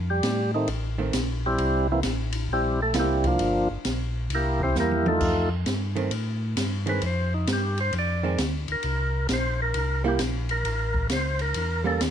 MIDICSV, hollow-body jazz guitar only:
0, 0, Header, 1, 2, 480
1, 0, Start_track
1, 0, Tempo, 453172
1, 1687, Time_signature, 4, 2, 24, 8
1, 12822, End_track
2, 0, Start_track
2, 0, Title_t, "Hollow-body jazz guitar"
2, 0, Program_c, 0, 26
2, 1042, Note_on_c, 0, 51, 59
2, 1048, Note_on_c, 0, 57, 58
2, 1055, Note_on_c, 0, 60, 56
2, 1190, Note_off_c, 0, 51, 0
2, 1193, Note_off_c, 0, 57, 0
2, 1196, Note_off_c, 0, 60, 0
2, 3121, Note_on_c, 0, 55, 59
2, 3125, Note_on_c, 0, 58, 66
2, 3129, Note_on_c, 0, 64, 73
2, 3604, Note_off_c, 0, 55, 0
2, 3606, Note_off_c, 0, 58, 0
2, 3608, Note_off_c, 0, 64, 0
2, 5048, Note_on_c, 0, 55, 51
2, 5058, Note_on_c, 0, 58, 53
2, 5063, Note_on_c, 0, 64, 56
2, 5527, Note_off_c, 0, 55, 0
2, 5532, Note_off_c, 0, 58, 0
2, 5535, Note_off_c, 0, 64, 0
2, 6308, Note_on_c, 0, 51, 58
2, 6318, Note_on_c, 0, 57, 67
2, 6323, Note_on_c, 0, 60, 74
2, 6463, Note_off_c, 0, 51, 0
2, 6467, Note_off_c, 0, 57, 0
2, 6470, Note_off_c, 0, 60, 0
2, 7266, Note_on_c, 0, 51, 61
2, 7282, Note_on_c, 0, 60, 65
2, 7283, Note_on_c, 0, 56, 64
2, 7422, Note_off_c, 0, 51, 0
2, 7429, Note_off_c, 0, 60, 0
2, 7430, Note_off_c, 0, 56, 0
2, 8722, Note_on_c, 0, 51, 68
2, 8730, Note_on_c, 0, 56, 65
2, 8732, Note_on_c, 0, 60, 70
2, 8870, Note_off_c, 0, 51, 0
2, 8874, Note_off_c, 0, 56, 0
2, 8875, Note_off_c, 0, 60, 0
2, 10637, Note_on_c, 0, 55, 66
2, 10641, Note_on_c, 0, 58, 77
2, 10650, Note_on_c, 0, 64, 80
2, 10787, Note_off_c, 0, 55, 0
2, 10789, Note_off_c, 0, 58, 0
2, 10794, Note_off_c, 0, 64, 0
2, 12544, Note_on_c, 0, 55, 61
2, 12554, Note_on_c, 0, 58, 64
2, 12557, Note_on_c, 0, 61, 75
2, 12701, Note_off_c, 0, 55, 0
2, 12706, Note_off_c, 0, 58, 0
2, 12708, Note_off_c, 0, 61, 0
2, 12822, End_track
0, 0, End_of_file